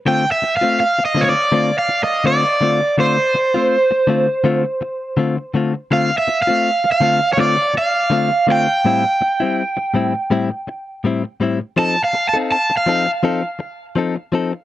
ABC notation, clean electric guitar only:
X:1
M:4/4
L:1/16
Q:"Swing 16ths" 1/4=82
K:Ddor
V:1 name="Clean electric guitar"
[D,A,CF] z2 [A,CF] z2 [D,A,CF] z [D,A,CF] z3 [D,A,CF] z [D,A,CF] z | [D,A,CF] z2 [A,CF] z2 [D,A,CF] z [D,A,CF] z3 [D,A,CF] z [D,A,CF] z | [D,A,CF] z2 [A,CF] z2 [D,A,CF] z [D,A,CF] z3 [D,A,CF] z [D,A,CF] z | [A,,G,CE] z2 [G,CE] z2 [A,,G,CE] z [A,,G,CE] z3 [A,,G,CE] z [A,,G,CE] z |
[F,C_EA] z2 [CEA] z2 [F,CEA] z [F,CEA] z3 [F,CEA] z [F,CEA] z |]